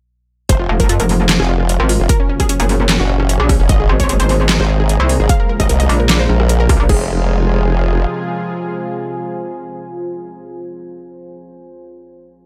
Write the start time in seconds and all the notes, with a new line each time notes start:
0.49 F1 G#2 C3 F3 C4 F4 C5, kick, closed hi-hat
0.60 F4
0.67 F1 F4 C5
0.80 A#4, kick, closed hi-hat
0.89 F2 F4, closed hi-hat
1.00 F1 A#4, closed hi-hat
1.09 F4, open hi-hat
1.20 F4 G#5
1.29 F4, snare, clap, closed hi-hat
1.40 F1 G#4, cross-stick
1.49 F4
1.60 F4
1.69 F4, closed hi-hat
1.80 G#1 A#4
1.89 F4, open hi-hat
2.00 F1 F4
2.09 A#2 C#3 F#3 C#4 F#4 A#4, kick, closed hi-hat
2.20 C#4
2.29 C#4
2.38 G#4 C#5, kick, cross-stick, closed hi-hat
2.49 C#4, closed hi-hat
2.60 F#1 G#4 A#5, closed hi-hat
2.69 C#4, open hi-hat
2.80 C#4
2.89 C#4, snare, clap, closed hi-hat
3.00 F#1 F#4
3.09 C#4, cross-stick
3.20 C#4, cross-stick
3.29 C#4, closed hi-hat
3.40 A#1 G#4
3.49 C#4, kick, cross-stick, open hi-hat
3.60 F#1 C#4
3.69 G#1 C3 D#3 G#3 A#3 D#4 G#4 D#5, kick, closed hi-hat
3.80 G#4
3.89 G#1 G#4
3.95 C5
4.00 C#5, kick, closed hi-hat
4.09 G#1 G#4, closed hi-hat
4.20 G#1 C5, closed hi-hat
4.29 G#4, open hi-hat
4.40 G#4
4.49 G#4, snare, clap, closed hi-hat
4.60 G#1 C5, cross-stick
4.69 G#4
4.80 G#4
4.89 G#4, closed hi-hat
5.00 C2 C5
5.09 G#4, open hi-hat
5.20 G#1 G#4
5.29 C#3 F3 G#3 F4 F5, kick, closed hi-hat
5.40 A#4
5.49 A#4 C#5
5.60 G#1 D#5, kick, cross-stick, closed hi-hat
5.69 C2 A#4, closed hi-hat
5.80 D#5, closed hi-hat
5.89 A#1 A#4, open hi-hat
6.00 A#4
6.09 A#4, snare, clap, closed hi-hat
6.20 C5
6.29 A#1 A#4, cross-stick
6.40 A#4, cross-stick
6.49 A#4, closed hi-hat
6.60 A#4
6.69 C#2 A#4, kick, cross-stick, open hi-hat
6.80 A#1 A#4
6.89 F1 C3 F3 G#3 F4 G#4, kick, crash
6.96 C5
7.02 G#5